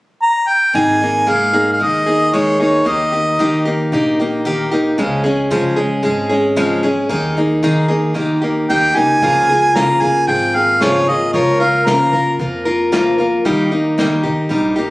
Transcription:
0.23 A#5
0.49 G5
0.74 G#1 G#3 A#3 D#4 G#4 G#5
1.01 A#3 D#4 G#4
1.27 G#2 G#3 A#3 D#4 G#4 F5
1.53 A#3 D#4 G#4
1.73 F5
1.80 D#2 G#3 A#3 D#4 G#4 D#5
2.06 A#3 D#4 G#4
2.33 G#3 A#3 D#4 G#4 C#5
2.60 A#3 D#4 G#4 C#5
2.85 D#2 D#3 A#3 D#4 G4 D#5
3.12 A#3 D#4 G4
3.39 D#3 A#3 D#4 G4
3.65 A#3 D#4 G4
3.92 A#1 D#3 A#3 D#4 G4
4.20 A#3 D#4 G4
4.45 D#3 A#3 D#4 G4
4.71 A#3 D#4 G4
4.98 C#2 C#3 F3 G#3 C#4 G#4
5.24 G#3 C#4 G#4
5.51 C#3 F3 G#3 C#4 G#4
5.76 G#3 C#4 G#4
6.03 G#1 F3 G#3 C#4 G#4
6.29 G#3 C#4 G#4
6.56 C#3 F3 G#3 C#4 G#4
6.83 G#3 C#4 G#4
7.09 D#2 D#3 A#3 D#4 G#4
7.37 A#3 D#4 G#4
7.63 D#3 A#3 D#4 G#4
7.88 A#3 D#4 G#4
8.14 D#2 D#3 A#3 D#4 G4
8.42 A#3 D#4 G4
8.70 D#2 D#3 A#3 D#4 G4 G5
8.95 C#2 A#3 D#4 G4 G#5
9.22 C#2 C#3 F3 A#3 F4 G#4, kick
9.49 A#3 F4 G#4
9.75 C#3 F3 A#3 F4 G#4 A#5, snare
10.02 A#3 F4 G#4 G#5, kick
10.27 G#1 F3 A#3 F4 G#4 G5, kick
10.55 A#3 F4 G#4 F5
10.81 C#3 F3 A#3 F4 G#4 C#5, snare
11.08 A#3 F4 G#4 D#5
11.33 C#2 C#3 F3 A#3 F4 A#4 C#5, kick
11.60 A#3 F4 A#4 F5
11.86 C#3 F3 A#3 F4 A#4 A#5, snare
12.13 A#3 F4 A#4, kick
12.39 F2 F3 A#3 F4 A#4, kick
12.65 A#3 F4 A#4
12.92 C#3 F3 A#3 F4 A#4, snare
13.18 A#3 F4 A#4
13.45 D#2 D#3 G3 A#3 D#4 G4, kick
13.71 A#3 D#4 G4
13.98 D#3 G3 A#3 D#4 G4, snare
14.23 A#3 D#4 G4, kick
14.49 A#1 G3 A#3 D#4 G4, kick
14.76 A#3 D#4 G4

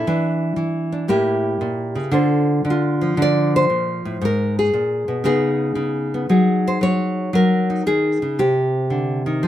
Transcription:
Already playing: E4
0.07 E3 D4
0.56 E3
0.92 D4
1.08 A2 A#3 E4 G4
1.61 A#2
1.95 C#3
2.11 D3 F4 A4 C5
2.65 D3
2.70 F4
3.01 F3
3.17 D3
3.22 D5
3.56 C5
3.70 A#2
4.05 A2
4.21 G#2 A#4
4.59 G#4
4.73 A#2
5.08 B2
5.24 C#3 B3 D#4 G#4
5.75 C#3
6.14 B3
6.29 F#3 D#4 G#4
6.68 C5
6.81 F#3 C#5
7.33 F#3 A#4
7.70 D#4
7.86 D#3 G#4
8.22 C#3
8.39 C3 G4
8.90 D3
9.26 D#3
9.43 F3

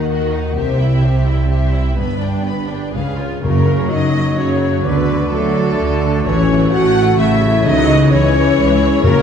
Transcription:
Already playing: D#2 D#3 D#4 F#4 A#4 F#5
0.09 F#4 A#4 D#5
0.32 D#4 F#4 A#4 F#5
0.54 C2 C3 G4 C5
0.58 E5
0.79 E4 E5 G5
1.03 G4 C5 E5
1.25 E4 C5 E5 G5
1.48 G4 C5 E5
1.71 E4 C5 E5 G5
1.95 G1 G2 B3 B4
1.99 B5
2.19 D4 D5 G5
2.42 B3 G4 B4
2.48 B5
2.68 D4 B4 D5 G5
2.92 C#2 C#3 G#4 B4 F5
3.16 F4 G#4 B4 C#5
3.20 G#5
3.41 F#1 F#2 C#3 F#3 A#3 F#4 A#4 C#5
3.55 C#3
3.67 F#4
3.79 C#3
3.89 F#1 F#2 F#3 D#4 C#5 D#5
4.04 F#5
4.15 C#5
4.27 C#6
4.36 F#1 F#2 C#3 F#3 C#4 C#5 F#5
4.61 F#4
4.73 C#3
4.82 D2 D3 B3 B4 D5
4.97 A3
5.08 F#4
5.30 D2 D3 F#3 A3 A4
5.43 F#5
5.54 A5
5.78 D2 D3 A5
5.90 F#5
6.14 F#4
6.24 A1 A2 E3 C#4 C#5
6.37 E3
6.49 E4
6.60 A4
6.70 A1 A3 F#4 F#5
6.95 A5
7.07 C#6
7.17 A1 C#3 A3 E4 E5
7.42 A4
7.53 E4
7.63 C#2 C#3 F#3 D#4 D#5
7.77 G#3
7.88 E4
7.99 G#4
8.09 C#2 E3 C#4 C#5
8.23 E5
8.34 G#5
8.46 C#6
8.57 C#2 G#3 G#5
8.69 E5
8.80 G#4
8.91 E4
9.02 F#1 F#2 C#3 F#3 A#3 F#4 A#4 C#5
9.15 C#3

